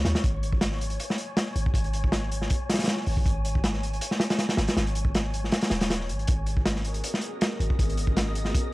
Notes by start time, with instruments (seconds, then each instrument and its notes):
Already playing: synth texture C#5 C#6
0.05 808-style bass D#2, snare, closed hi-hat
0.15 snare, closed hi-hat
0.24 808-style bass G#1, synth texture G#5, kick, closed hi-hat
0.43 closed hi-hat
0.52 kick
0.61 snare, closed hi-hat
0.72 snare
0.81 closed hi-hat
0.90 closed hi-hat
1.00 closed hi-hat
1.10 snare
1.18 closed hi-hat
1.37 snare, closed hi-hat
1.56 808-style bass G#1, closed hi-hat
1.66 kick
1.74 808-style bass G#1, kick, closed hi-hat
1.84 closed hi-hat
1.93 closed hi-hat
2.04 kick
2.12 snare, closed hi-hat
2.32 closed hi-hat
2.42 snare
2.50 kick, closed hi-hat
2.69 snare, closed hi-hat
2.74 snare, closed hi-hat
2.79 snare, closed hi-hat
2.84 snare, closed hi-hat
2.88 snare, closed hi-hat
2.97 snare
3.06 808-style bass G#1, open hi-hat
3.17 kick
3.26 808-style bass G#1, kick, closed hi-hat
3.45 closed hi-hat
3.55 kick
3.64 snare, closed hi-hat
3.73 snare
3.83 closed hi-hat
3.93 closed hi-hat
4.01 closed hi-hat
4.11 snare
4.20 snare, closed hi-hat
4.30 snare, closed hi-hat
4.38 snare, closed hi-hat
4.49 snare, closed hi-hat
4.57 808-style bass G#1, snare, closed hi-hat
4.68 snare, closed hi-hat
4.77 808-style bass G#1, snare, closed hi-hat
4.87 closed hi-hat
4.95 closed hi-hat
5.05 kick
5.15 snare, closed hi-hat
5.34 closed hi-hat
5.44 snare
5.52 snare, closed hi-hat
5.61 snare, closed hi-hat
5.70 808-style bass D#1, snare, closed hi-hat
5.81 snare, closed hi-hat
5.90 snare, closed hi-hat
6.00 snare
6.09 808-style bass G#1, closed hi-hat
6.19 closed hi-hat
6.27 808-style bass G#1, ambient pad B3 C#4 F#4 G#4 A#4, synth texture D#5 D#6, kick, closed hi-hat
6.46 closed hi-hat
6.57 kick
6.66 snare, closed hi-hat
6.76 snare
6.85 closed hi-hat
6.94 closed hi-hat
7.04 closed hi-hat
7.14 snare
7.21 closed hi-hat
7.41 snare, closed hi-hat
7.60 808-style bass G#1, closed hi-hat
7.70 kick
7.79 808-style bass G#1, ambient pad B3 C#4 F#4 G#4 A#4, kick, closed hi-hat
7.90 closed hi-hat
7.97 closed hi-hat
8.07 kick
8.17 snare, closed hi-hat
8.35 closed hi-hat
8.45 snare
8.55 kick, closed hi-hat